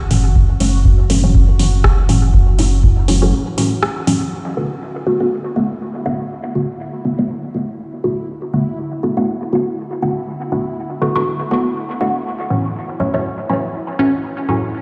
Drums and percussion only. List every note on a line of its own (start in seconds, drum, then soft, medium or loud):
0.11 open hi-hat medium
0.36 kick loud
0.60 open hi-hat medium
0.85 kick loud
1.10 open hi-hat medium
1.35 kick loud
1.59 open hi-hat medium
1.84 kick loud
1.84 cross-stick medium
2.09 open hi-hat medium
2.34 kick loud
2.59 open hi-hat medium
2.83 kick loud
3.08 open hi-hat medium
3.58 open hi-hat medium
3.83 cross-stick medium
4.07 open hi-hat medium